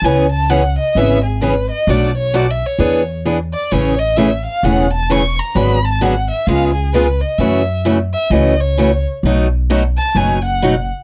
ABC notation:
X:1
M:4/4
L:1/8
Q:"Swing" 1/4=130
K:C#m
V:1 name="Violin"
g a f d e G B d | =d c (3d e c- c z2 d | c d e ^e f a c' ^a | b a f e ^e G B d |
e2 z e d c2 z | z3 a g f2 z |]
V:2 name="Steel-string acoustic guitar"
[C,E,B,CG] z [C,E,B,CG] z [C,E,B,CG] z [C,E,B,CG] z | [B,,F,A,=DF] z [B,,F,A,DF] z [E,B,DG] z [E,B,DG] z | [C,E,A,CG] z [C,E,A,CG] z [C,E,A,CG] z [C,E,A,CG] z | [=D,F,B,FG] z [D,F,B,FG] z [C,G,B,^EG] z [C,G,B,EG] z |
[C,E,A,CF] z [C,E,A,CF] z [C,E,A,CF] z [C,E,A,CF] z | [B,,F,A,DF] z [B,,F,A,DF] z [B,,F,A,DF] z [B,,F,A,DF] z |]
V:3 name="Upright bass" clef=bass
C,,4 G,,,4 | B,,,4 E,,4 | A,,,4 E,,,4 | G,,,4 C,,4 |
F,,4 C,,4 | B,,,4 F,,,4 |]